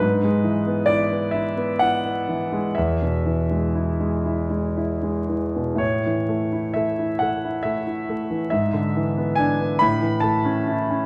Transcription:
<<
  \new Staff \with { instrumentName = "Grand piano" } { \time 12/8 \key e \mixolydian \tempo 4. = 44 b'4 d''8 e''8 fis''4 e''4. r4. | cis''4 e''8 fis''8 e''4 e''4 gis''8 b''8 a''4 | }
  \new Staff \with { instrumentName = "Grand piano" } { \time 12/8 \key e \mixolydian gis,16 gis16 e16 b16 e'16 b16 e'16 b16 e'16 b16 e16 gis16 e,16 b,16 e16 gis16 e'16 gis16 e'16 gis16 e'16 gis16 e16 b,16 | a,16 e16 a16 e'16 a16 e'16 a16 e'16 a16 e'16 a16 e16 gis,16 d16 e16 b16 d'16 b16 a,16 e16 a16 cis'16 e'16 cis'16 | }
>>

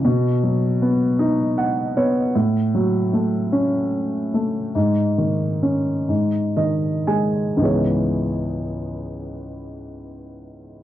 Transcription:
<<
  \new Staff \with { instrumentName = "Grand piano" } { \time 6/8 \key cis \minor \tempo 4. = 47 r2 fis''8 cis''8 | r2. | r2 dis''8 gis''8 | r2. | }
  \new Staff \with { instrumentName = "Grand piano" } { \clef bass \time 6/8 \key cis \minor b,8 fis8 b8 dis'4 b8 | a,8 fis8 a8 cis'4 a8 | gis,8 dis8 cis'8 gis,8 dis8 gis8 | <cis, gis, e b gis' cis''>2. | }
>>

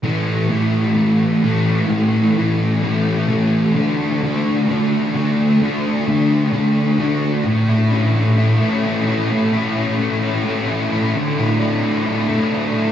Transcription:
\new Staff \with { instrumentName = "Distorted electric guitar" } { \time 4/4 \key a \major \tempo 4 = 130 <a, e a>4 <a, e a>4 <a, e a>4 <a, e a>4 | <a, e a>4 <a, e a>4 <a, e a>4 <a, e a>4 | <d a d'>4 <d a d'>4 <d a d'>4 <d a d'>4 | <d a d'>4 <d a d'>4 <d a d'>4 <d a d'>4 |
a,8 e'8 cis'8 a8 e'8 a8 cis'8 e'8 | a,8 e'8 cis'8 a8 e'8 a8 cis'8 e'8 | d8 e'8 d'8 a8 e'8 a8 d'8 e'8 | }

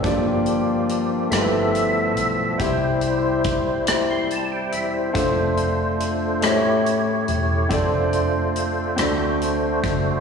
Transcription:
<<
  \new Staff \with { instrumentName = "Grand piano" } { \time 6/8 \key g \dorian \tempo 4. = 47 << { a'16 r2 r8. | r2. | r2. | r2. | } \\ { <bes d' f' g' d''>4 r8 <a e' f' g' bes' b'>4 r8 | <e' g' c''>4 r8 <e' g' c''>4 r8 | <a c' d' f' c''>4 r8 <a cis' e' g' c'' cis''>4 r8 | <c' d' f' a' d''>4 r8 <c' d' fis' a' d''>4 r8 | } >> }
  \new Staff \with { instrumentName = "Grand piano" } { \clef bass \time 6/8 \key g \dorian g,4. g,4. | c4. r4. | r4. a,4. | r4. d4. | }
  \new Staff \with { instrumentName = "Tonewheel organ" } { \time 6/8 \key g \dorian << { r2. | r4. r16 c'''16 a''16 g''16 e''16 c''16~ | c''16 r2 r8. | r2. | } \\ { <f bes d' g'>4. <f b g' a' e''>4. | <g c' e' c''>2. | <aes a d' f' c''>4. <a e' g' cis''>4. | <a d' f' c''>4. <a d' fis' c''>4. | } >> }
  \new Staff \with { instrumentName = "Fingered electric bass" } { \clef bass \time 6/8 \key g \dorian g,,4. g,,4 b,,8 | c,2~ c,8 e,,8 | f,,4. a,,4 e,,8 | f,,4. d,4 fis,,8 | }
  \new DrumStaff \with { instrumentName = "Drums" } \drummode { \time 6/8 <hh bd>8 hh8 hh8 <hh ss>8 hh8 hh8 | <hh bd>8 hh8 <hh bd>8 <hh ss>8 hh8 hh8 | <hh bd>8 hh8 hh8 <hh ss>8 hh8 hh8 | <hh bd>8 hh8 hh8 <hh ss>8 hh8 <hh bd>8 | }
>>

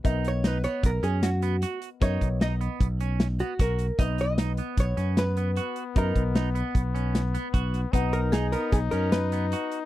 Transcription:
<<
  \new Staff \with { instrumentName = "Grand piano" } { \time 5/4 \key b \major \tempo 4 = 152 <b ais' dis''>1~ <b ais' dis''>4 | <b ais' dis''>1~ <b ais' dis''>4 | <b b' dis''>1~ <b b' dis''>4 | <b ais' dis''>1~ <b ais' dis''>4 |
<b b' fis''>1~ <b b' fis''>4 | }
  \new Staff \with { instrumentName = "Hollow-body jazz guitar" } { \time 5/4 \key b \major r8 cis''8 b'8 cis''8 ais'8 gis'8 fis'4. r8 | cis''4 dis''4 r4. fis'8 ais'4 | dis''8 dis''4. cis''4 b'2 | ais'4 r1 |
r8 ais'8 gis'8 ais'8 gis'8 ais'8 b'2 | }
  \new Staff \with { instrumentName = "Clean electric guitar" } { \time 5/4 \key b \major dis'4 dis'8 b4 cis'4 b8 fis'4 | dis'4 dis'8 b4 cis'4 b8 fis'4 | dis'4 dis'8 b4 cis'4 b8 fis'4 | dis'4 dis'8 b4 cis'4 b8 fis'4 |
dis'4 dis'8 b4 cis'4 b8 fis'4 | }
  \new Staff \with { instrumentName = "Flugelhorn" } { \time 5/4 \key b \major r1 r4 | r1 r4 | b1~ b4~ | b1~ b4 |
dis'1~ dis'4 | }
  \new Staff \with { instrumentName = "Fingered electric bass" } { \clef bass \time 5/4 \key b \major b,,2 b,,8 fis,2 r8 | fis,8 b,,4. b,,2 b,,4 | b,,2 b,,8 fis,2 r8 | fis,8 b,,4. b,,2 b,,4 |
b,,2 b,,8 fis,2 r8 | }
  \new DrumStaff \with { instrumentName = "Drums" } \drummode { \time 5/4 <hh bd>8 hh8 <hh sn>8 <hh sn>8 <hh bd>8 hh8 <hh sn>8 hh8 <hh sn>8 hh8 | <hh bd>8 <hh bd>8 <hh sn>8 hh8 <hh bd>8 hh8 <hh sn>8 hh8 <hh bd sn>8 hh8 | <hh bd>8 hh8 <hh sn>8 hh8 <hh bd>8 <hh sn>8 <hh sn>8 hh8 hh8 hh8 | <hh bd>8 <hh bd>8 <hh sn>8 hh8 <hh bd>8 hh8 <hh sn>8 <hh sn>8 <hh bd>8 <hh sn>8 |
<hh bd>8 hh8 <hh sn>8 hh8 <hh bd sn>8 hh8 <hh sn>8 hh8 hh8 hh8 | }
>>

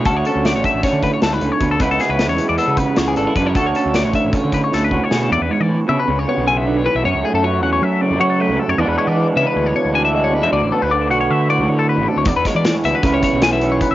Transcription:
<<
  \new Staff \with { instrumentName = "Clean electric guitar" } { \time 9/8 \key d \lydian \tempo 4. = 103 a'16 cis''16 a'8 d''16 cis''16 e''8 cis''8 b'16 cis''16 a'16 b'8 cis''8 a'16 | b'16 a'16 gis'16 b'8 cis''8 d''16 a'8 b'8 cis''16 gis'16 a'8 b'16 cis''16 | a'16 cis''16 a'8 d''16 cis''16 e''8 cis''8 b'16 cis''16 a'16 b'8 cis''8 a'16 | d''16 b'16 cis''16 d''8 r16 e''16 b'8 cis''16 cis''8 gis''16 e''8 cis''16 b'16 e''16 |
cis''8 gis'16 a'16 cis''8 fis''16 cis''16 e''8 d''8 cis''16 a'16 b'8 a'16 cis''16 | d''16 b'16 cis''16 d''8 r16 e''16 b'8 cis''16 cis''8 gis''16 e''8 cis''16 b'16 e''16 | d''8 a'16 b'16 d''8 fis''16 cis''16 e''8 d''8 cis''16 a'16 b'8 a'16 cis''16 | d''16 b'16 cis''16 d''8 r16 e''16 b'8 cis''16 cis''8 gis''16 e''8 cis''16 b'16 e''16 | }
  \new Staff \with { instrumentName = "Clean electric guitar" } { \clef bass \time 9/8 \key d \lydian << { fis'8 cis'8 a4 cis'2~ cis'8 | <e gis b e'>8 b8 gis4 b4. d'16 e'16 d'16 e'16 | fis'8 cis'8 a4 cis'4. fis'8 gis'8 | r2 r8 b2 |
r8 a4 cis'4. fis'8 a4 | <e gis b d'>8 gis4 b4. d'8 gis4 | r8 b4 fis'2. | r8 gis4 b8 <e b cis' e'>8 b4 cis'4 | } \\ { <d, d>4. d4 a,8 gis,8 a,8 b,8 | cis4. e4 cis4. cis8 | d,4. d4 a,4. d,8 | e,8 gis,8 a,8 b,8 cis4 cis8 d8 e8 |
fis,4 fis4. cis4. fis,8 | e,4 e4. b,4. e,8 | d,4 d4. a,4. d,8 | e,4 e4 cis4 e4. | } >> }
  \new Staff \with { instrumentName = "Fingered electric bass" } { \clef bass \time 9/8 \key d \lydian d,8 r16 d,8 a,,16 r16 a,,16 r16 d8 r16 d,8 cis,16 r16 d,8 | cis,8 r16 cis,8 e,16 r16 e,16 r16 cis8 r16 cis,8 gis,,16 r16 fis,8 | d,8 r16 d,8 a,,16 r16 a,,16 r16 d8 r16 d,8 cis,16 r16 b,8 | e,16 e,16 r16 e8 r16 cis16 r16 cis,8 r16 b,,4. b,,16 |
fis,16 cis,16 r16 fis,8. e,8 fis8. fis,16 fis8. cis,16 r16 fis,16 | e,16 e,16 r16 e8 r16 cis16 r16 d,8 r16 d,4. e,16 | d,16 a,,16 r16 d,8. b,,8 d8. d,16 d8. a,,16 r16 d,16 | e,16 e,16 r16 e8 r16 d,16 r16 cis,8 r16 b,,4. b,,16 | }
  \new DrumStaff \with { instrumentName = "Drums" } \drummode { \time 9/8 <hh bd>8 hh8 <hh sn>8 <hh bd>8 <hh bd sn>8 <hh bd>8 <hh sn>8 hh8 <hh bd>8 | <hh bd>8 <hh sn>8 <hh sn>8 hh8 hh8 <hh bd>8 <hh sn>8 hh8 <hh bd>8 | <hh bd>8 hh8 <hh sn>8 <hh bd>8 <hh bd>8 <hh bd>8 sn8 bd8 sn8 | r4 r4 r4 r4. |
r4 r4 r4 r4. | r4 r4 r4 r4. | r4 r4 r4 r4. | <hh bd>8 <hh bd sn>8 <hh sn>8 hh8 <hh bd>8 <hh bd>8 <hh sn>8 hh8 <hh bd>8 | }
>>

